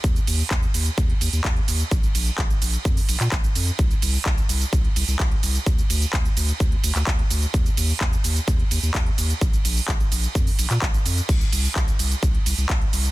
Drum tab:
CC |----------------|----------------|----------------|----------------|
RD |--x---x---x---x-|--x---x---x---x-|--x---x---x---x-|--x---x---x---x-|
HH |xxoo-xoxxxoxxxox|xxoxxxoxxooxxxox|xxoo-xoxxxoxxxox|xxoxxxoxxxoxxxox|
SH |xxxxxxxxx-xxx-xx|xxxxxxxxxxxxxxxx|xxxxxxxxx-xxx-xx|xxxxxxxxx-xxx-xx|
CP |----x-------x---|----x------xx---|----x-------x---|----x------xx---|
BD |o---o---o---o---|o---o---o---o---|o---o---o---o---|o---o---o---o---|

CC |----------------|----------------|x---------------|
RD |--x---x---x---x-|--x---x---x---x-|--x---x---x---x-|
HH |xxoo-xoxxxoxxxox|xxoo-xoxxooxxxox|xxoo-xoxxxoxxxox|
SH |xxxxxxxxx-xxx-xx|xxxxxxxxxxxxxxxx|xxxxxxxxx-xxx-xx|
CP |----x-------x---|----x------xx---|----x-------x---|
BD |o---o---o---o---|o---o---o---o---|o---o---o---o---|